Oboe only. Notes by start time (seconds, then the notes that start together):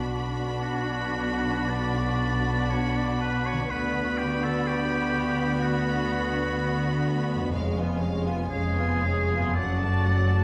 0.62 F#4
1.70 D5
2.70 C#5
2.97 D5
3.20 B4
3.46 C#5
3.70 B4
4.18 G4
4.43 A4
4.67 G4
5.63 F#4
8.50 G#4
9.55 D5